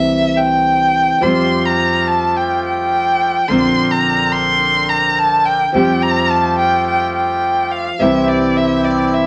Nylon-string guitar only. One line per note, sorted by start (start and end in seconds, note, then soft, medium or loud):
0.00 1.20 C3 medium
0.00 1.20 E3 loud
0.00 1.21 A3 medium
0.00 1.23 C4 medium
0.00 1.22 E4 loud
1.21 3.48 F3 medium
1.21 3.48 G3 medium
1.21 3.51 C4 medium
1.21 3.49 G4 medium
3.48 5.72 D3 medium
3.48 5.73 A#3 medium
3.48 5.75 C4 loud
3.48 5.74 F4 medium
5.73 7.99 F3 medium
5.73 7.99 G3 loud
5.73 8.01 C4 loud
5.73 8.00 G4 medium
7.99 9.27 C3 medium
7.99 9.27 E3 medium
7.99 9.27 G3 loud
7.99 9.27 C4 medium
7.99 9.27 E4 medium